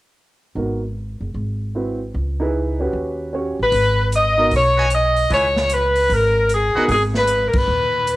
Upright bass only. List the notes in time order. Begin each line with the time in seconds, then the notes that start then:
0.55 G#1
1.21 F#1
1.34 G#1
2.14 C#2
2.93 D#2
3.59 A1
3.72 G#1
4.52 B1
5.30 C#2
6.09 G#1
6.75 muted upright bass stroke
6.88 G#1
7.54 G1
7.68 D#2